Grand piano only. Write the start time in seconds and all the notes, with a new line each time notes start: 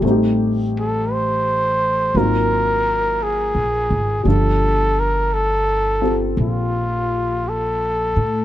0.00 G3 A3
0.05 C4 D#4
0.11 G4
2.15 F#3 A#3 C4 D#4 F4
4.23 F3 G3 D4
4.28 F4
6.01 C4 F4 G4 A4